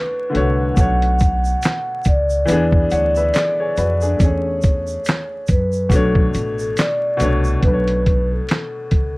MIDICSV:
0, 0, Header, 1, 5, 480
1, 0, Start_track
1, 0, Tempo, 857143
1, 431, Time_signature, 4, 2, 24, 8
1, 5139, End_track
2, 0, Start_track
2, 0, Title_t, "Vibraphone"
2, 0, Program_c, 0, 11
2, 0, Note_on_c, 0, 71, 78
2, 412, Note_off_c, 0, 71, 0
2, 438, Note_on_c, 0, 78, 103
2, 1132, Note_off_c, 0, 78, 0
2, 1162, Note_on_c, 0, 74, 75
2, 1614, Note_off_c, 0, 74, 0
2, 1637, Note_on_c, 0, 74, 81
2, 2354, Note_off_c, 0, 74, 0
2, 2357, Note_on_c, 0, 73, 90
2, 3052, Note_off_c, 0, 73, 0
2, 3080, Note_on_c, 0, 71, 72
2, 3293, Note_off_c, 0, 71, 0
2, 3313, Note_on_c, 0, 69, 75
2, 3667, Note_off_c, 0, 69, 0
2, 3699, Note_on_c, 0, 69, 77
2, 3787, Note_off_c, 0, 69, 0
2, 3795, Note_on_c, 0, 74, 67
2, 4011, Note_off_c, 0, 74, 0
2, 4275, Note_on_c, 0, 71, 90
2, 4628, Note_off_c, 0, 71, 0
2, 4660, Note_on_c, 0, 69, 61
2, 5139, Note_off_c, 0, 69, 0
2, 5139, End_track
3, 0, Start_track
3, 0, Title_t, "Upright piano"
3, 0, Program_c, 1, 0
3, 0, Control_c, 1, 64, 127
3, 0, Note_on_c, 1, 57, 83
3, 0, Note_on_c, 1, 62, 94
3, 0, Note_on_c, 1, 66, 89
3, 0, Note_on_c, 1, 73, 104
3, 58, Note_off_c, 1, 57, 0
3, 70, Note_off_c, 1, 73, 0
3, 82, Note_off_c, 1, 66, 0
3, 167, Note_on_c, 1, 50, 82
3, 179, Note_on_c, 1, 57, 77
3, 193, Note_on_c, 1, 66, 70
3, 206, Note_on_c, 1, 73, 83
3, 356, Note_off_c, 1, 50, 0
3, 362, Note_off_c, 1, 57, 0
3, 368, Note_off_c, 1, 66, 0
3, 375, Note_off_c, 1, 73, 0
3, 416, Note_on_c, 1, 47, 65
3, 425, Note_on_c, 1, 57, 65
3, 438, Note_off_c, 1, 62, 0
3, 438, Control_c, 1, 64, 0
3, 438, Note_on_c, 1, 62, 62
3, 451, Note_on_c, 1, 73, 78
3, 538, Control_c, 1, 64, 127
3, 1094, Note_off_c, 1, 47, 0
3, 1098, Note_off_c, 1, 57, 0
3, 1105, Note_off_c, 1, 62, 0
3, 1112, Note_off_c, 1, 73, 0
3, 1375, Note_on_c, 1, 52, 104
3, 1388, Note_on_c, 1, 59, 90
3, 1399, Control_c, 1, 64, 0
3, 1399, Note_on_c, 1, 62, 90
3, 1411, Note_on_c, 1, 68, 107
3, 1497, Control_c, 1, 64, 127
3, 1632, Note_on_c, 1, 78, 65
3, 1635, Note_off_c, 1, 62, 0
3, 1635, Note_on_c, 1, 73, 53
3, 1641, Note_off_c, 1, 68, 0
3, 1762, Note_off_c, 1, 78, 0
3, 1764, Note_off_c, 1, 73, 0
3, 1773, Note_on_c, 1, 76, 62
3, 1776, Note_on_c, 1, 71, 58
3, 1869, Note_off_c, 1, 76, 0
3, 1870, Note_off_c, 1, 71, 0
3, 1873, Note_on_c, 1, 74, 70
3, 1876, Note_on_c, 1, 68, 58
3, 1973, Note_off_c, 1, 52, 0
3, 1980, Note_off_c, 1, 59, 0
3, 2003, Note_off_c, 1, 74, 0
3, 2004, Note_off_c, 1, 68, 0
3, 2014, Note_on_c, 1, 73, 63
3, 2017, Note_on_c, 1, 68, 57
3, 2109, Note_off_c, 1, 73, 0
3, 2111, Note_off_c, 1, 68, 0
3, 2116, Note_on_c, 1, 71, 65
3, 2118, Note_on_c, 1, 66, 50
3, 2244, Note_off_c, 1, 71, 0
3, 2245, Note_off_c, 1, 66, 0
3, 2250, Note_on_c, 1, 68, 65
3, 2257, Note_on_c, 1, 62, 57
3, 2336, Note_on_c, 1, 57, 64
3, 2355, Note_on_c, 1, 61, 61
3, 2360, Control_c, 1, 64, 0
3, 2364, Note_off_c, 1, 68, 0
3, 2372, Note_on_c, 1, 68, 75
3, 2455, Control_c, 1, 64, 127
3, 2481, Note_off_c, 1, 62, 0
3, 3014, Note_off_c, 1, 57, 0
3, 3023, Note_off_c, 1, 61, 0
3, 3032, Note_off_c, 1, 68, 0
3, 3299, Note_on_c, 1, 47, 76
3, 3311, Note_on_c, 1, 57, 76
3, 3320, Control_c, 1, 64, 0
3, 3323, Note_on_c, 1, 62, 80
3, 3335, Note_on_c, 1, 73, 90
3, 3421, Control_c, 1, 64, 127
3, 3895, Note_off_c, 1, 47, 0
3, 3901, Note_off_c, 1, 57, 0
3, 3907, Note_off_c, 1, 62, 0
3, 3913, Note_off_c, 1, 73, 0
3, 4015, Note_on_c, 1, 47, 93
3, 4027, Note_on_c, 1, 57, 77
3, 4038, Note_on_c, 1, 62, 76
3, 4051, Note_on_c, 1, 73, 86
3, 4199, Note_off_c, 1, 47, 0
3, 4205, Note_off_c, 1, 57, 0
3, 4211, Note_off_c, 1, 62, 0
3, 4217, Note_off_c, 1, 73, 0
3, 4260, Note_on_c, 1, 47, 65
3, 4272, Note_on_c, 1, 57, 53
3, 4278, Control_c, 1, 64, 0
3, 4286, Note_on_c, 1, 62, 58
3, 4297, Note_on_c, 1, 71, 58
3, 4326, Note_off_c, 1, 71, 0
3, 4332, Note_on_c, 1, 73, 68
3, 4367, Control_c, 1, 64, 127
3, 4936, Note_off_c, 1, 47, 0
3, 4942, Note_off_c, 1, 57, 0
3, 4949, Note_off_c, 1, 62, 0
3, 4972, Note_off_c, 1, 73, 0
3, 5139, End_track
4, 0, Start_track
4, 0, Title_t, "Upright bass"
4, 0, Program_c, 2, 32
4, 197, Note_on_c, 2, 36, 89
4, 405, Note_off_c, 2, 36, 0
4, 434, Note_on_c, 2, 35, 110
4, 855, Note_off_c, 2, 35, 0
4, 1155, Note_on_c, 2, 37, 90
4, 1365, Note_off_c, 2, 37, 0
4, 1395, Note_on_c, 2, 40, 106
4, 1605, Note_off_c, 2, 40, 0
4, 1636, Note_on_c, 2, 38, 88
4, 1845, Note_off_c, 2, 38, 0
4, 2115, Note_on_c, 2, 41, 91
4, 2325, Note_off_c, 2, 41, 0
4, 2355, Note_on_c, 2, 40, 103
4, 2776, Note_off_c, 2, 40, 0
4, 3076, Note_on_c, 2, 42, 81
4, 3285, Note_off_c, 2, 42, 0
4, 3305, Note_on_c, 2, 35, 101
4, 3519, Note_off_c, 2, 35, 0
4, 3555, Note_on_c, 2, 33, 88
4, 3764, Note_off_c, 2, 33, 0
4, 4036, Note_on_c, 2, 36, 89
4, 4245, Note_off_c, 2, 36, 0
4, 4273, Note_on_c, 2, 35, 101
4, 4695, Note_off_c, 2, 35, 0
4, 4995, Note_on_c, 2, 37, 75
4, 5139, Note_off_c, 2, 37, 0
4, 5139, End_track
5, 0, Start_track
5, 0, Title_t, "Drums"
5, 195, Note_on_c, 9, 42, 66
5, 251, Note_off_c, 9, 42, 0
5, 431, Note_on_c, 9, 42, 64
5, 431, Note_on_c, 9, 82, 69
5, 432, Note_on_c, 9, 36, 113
5, 487, Note_off_c, 9, 42, 0
5, 487, Note_off_c, 9, 82, 0
5, 488, Note_off_c, 9, 36, 0
5, 572, Note_on_c, 9, 42, 48
5, 628, Note_off_c, 9, 42, 0
5, 668, Note_on_c, 9, 82, 48
5, 675, Note_on_c, 9, 42, 64
5, 677, Note_on_c, 9, 36, 92
5, 724, Note_off_c, 9, 82, 0
5, 731, Note_off_c, 9, 42, 0
5, 733, Note_off_c, 9, 36, 0
5, 810, Note_on_c, 9, 82, 47
5, 866, Note_off_c, 9, 82, 0
5, 910, Note_on_c, 9, 82, 75
5, 911, Note_on_c, 9, 42, 82
5, 926, Note_on_c, 9, 38, 105
5, 929, Note_on_c, 9, 39, 86
5, 966, Note_off_c, 9, 82, 0
5, 967, Note_off_c, 9, 42, 0
5, 982, Note_off_c, 9, 38, 0
5, 985, Note_off_c, 9, 39, 0
5, 1143, Note_on_c, 9, 82, 50
5, 1148, Note_on_c, 9, 42, 72
5, 1153, Note_on_c, 9, 36, 91
5, 1199, Note_off_c, 9, 82, 0
5, 1204, Note_off_c, 9, 42, 0
5, 1209, Note_off_c, 9, 36, 0
5, 1288, Note_on_c, 9, 82, 47
5, 1344, Note_off_c, 9, 82, 0
5, 1388, Note_on_c, 9, 82, 65
5, 1392, Note_on_c, 9, 42, 101
5, 1444, Note_off_c, 9, 82, 0
5, 1448, Note_off_c, 9, 42, 0
5, 1526, Note_on_c, 9, 36, 95
5, 1582, Note_off_c, 9, 36, 0
5, 1628, Note_on_c, 9, 82, 39
5, 1632, Note_on_c, 9, 42, 67
5, 1684, Note_off_c, 9, 82, 0
5, 1688, Note_off_c, 9, 42, 0
5, 1767, Note_on_c, 9, 82, 45
5, 1823, Note_off_c, 9, 82, 0
5, 1869, Note_on_c, 9, 42, 85
5, 1872, Note_on_c, 9, 82, 69
5, 1881, Note_on_c, 9, 38, 100
5, 1884, Note_on_c, 9, 39, 86
5, 1925, Note_off_c, 9, 42, 0
5, 1928, Note_off_c, 9, 82, 0
5, 1937, Note_off_c, 9, 38, 0
5, 1940, Note_off_c, 9, 39, 0
5, 2111, Note_on_c, 9, 82, 46
5, 2114, Note_on_c, 9, 42, 72
5, 2167, Note_off_c, 9, 82, 0
5, 2170, Note_off_c, 9, 42, 0
5, 2248, Note_on_c, 9, 82, 50
5, 2304, Note_off_c, 9, 82, 0
5, 2352, Note_on_c, 9, 36, 112
5, 2353, Note_on_c, 9, 42, 70
5, 2353, Note_on_c, 9, 82, 68
5, 2408, Note_off_c, 9, 36, 0
5, 2409, Note_off_c, 9, 42, 0
5, 2409, Note_off_c, 9, 82, 0
5, 2587, Note_on_c, 9, 82, 47
5, 2596, Note_on_c, 9, 42, 63
5, 2598, Note_on_c, 9, 36, 94
5, 2643, Note_off_c, 9, 82, 0
5, 2652, Note_off_c, 9, 42, 0
5, 2654, Note_off_c, 9, 36, 0
5, 2728, Note_on_c, 9, 82, 44
5, 2784, Note_off_c, 9, 82, 0
5, 2829, Note_on_c, 9, 82, 72
5, 2834, Note_on_c, 9, 42, 86
5, 2849, Note_on_c, 9, 38, 113
5, 2852, Note_on_c, 9, 39, 100
5, 2885, Note_off_c, 9, 82, 0
5, 2890, Note_off_c, 9, 42, 0
5, 2905, Note_off_c, 9, 38, 0
5, 2908, Note_off_c, 9, 39, 0
5, 3063, Note_on_c, 9, 82, 47
5, 3070, Note_on_c, 9, 42, 72
5, 3073, Note_on_c, 9, 36, 83
5, 3119, Note_off_c, 9, 82, 0
5, 3126, Note_off_c, 9, 42, 0
5, 3129, Note_off_c, 9, 36, 0
5, 3206, Note_on_c, 9, 82, 45
5, 3262, Note_off_c, 9, 82, 0
5, 3303, Note_on_c, 9, 36, 99
5, 3311, Note_on_c, 9, 82, 64
5, 3314, Note_on_c, 9, 42, 91
5, 3359, Note_off_c, 9, 36, 0
5, 3367, Note_off_c, 9, 82, 0
5, 3370, Note_off_c, 9, 42, 0
5, 3446, Note_on_c, 9, 36, 89
5, 3502, Note_off_c, 9, 36, 0
5, 3552, Note_on_c, 9, 82, 42
5, 3554, Note_on_c, 9, 42, 66
5, 3608, Note_off_c, 9, 82, 0
5, 3610, Note_off_c, 9, 42, 0
5, 3690, Note_on_c, 9, 82, 49
5, 3746, Note_off_c, 9, 82, 0
5, 3790, Note_on_c, 9, 42, 88
5, 3792, Note_on_c, 9, 82, 68
5, 3802, Note_on_c, 9, 38, 111
5, 3805, Note_on_c, 9, 39, 84
5, 3846, Note_off_c, 9, 42, 0
5, 3848, Note_off_c, 9, 82, 0
5, 3858, Note_off_c, 9, 38, 0
5, 3861, Note_off_c, 9, 39, 0
5, 4031, Note_on_c, 9, 42, 70
5, 4032, Note_on_c, 9, 82, 51
5, 4087, Note_off_c, 9, 42, 0
5, 4088, Note_off_c, 9, 82, 0
5, 4169, Note_on_c, 9, 82, 49
5, 4225, Note_off_c, 9, 82, 0
5, 4271, Note_on_c, 9, 36, 105
5, 4271, Note_on_c, 9, 42, 63
5, 4327, Note_off_c, 9, 36, 0
5, 4327, Note_off_c, 9, 42, 0
5, 4411, Note_on_c, 9, 42, 47
5, 4467, Note_off_c, 9, 42, 0
5, 4515, Note_on_c, 9, 42, 55
5, 4517, Note_on_c, 9, 36, 84
5, 4571, Note_off_c, 9, 42, 0
5, 4573, Note_off_c, 9, 36, 0
5, 4752, Note_on_c, 9, 42, 79
5, 4767, Note_on_c, 9, 38, 107
5, 4770, Note_on_c, 9, 39, 80
5, 4808, Note_off_c, 9, 42, 0
5, 4823, Note_off_c, 9, 38, 0
5, 4826, Note_off_c, 9, 39, 0
5, 4990, Note_on_c, 9, 42, 60
5, 4993, Note_on_c, 9, 36, 81
5, 5046, Note_off_c, 9, 42, 0
5, 5049, Note_off_c, 9, 36, 0
5, 5139, End_track
0, 0, End_of_file